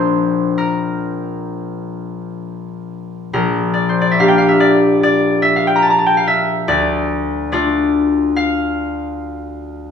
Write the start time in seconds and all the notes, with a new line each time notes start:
Already playing: A#1 A#3 C4 D4 C5
0.58 A#4
3.33 A#1 A#4
3.74 D5
3.89 C5
4.01 D5
4.11 E5
4.19 A#3 D4 G4 F5
4.28 G5
4.38 F5
4.49 E5
4.60 D5
5.03 D5
5.42 E5
5.56 F5
5.67 G5
5.76 A#5
5.82 A5
5.90 A#5
5.99 A5
6.06 G5
6.17 F5
6.27 E5
6.68 D2 D5
7.52 A3 D4 F4 D5
8.36 F5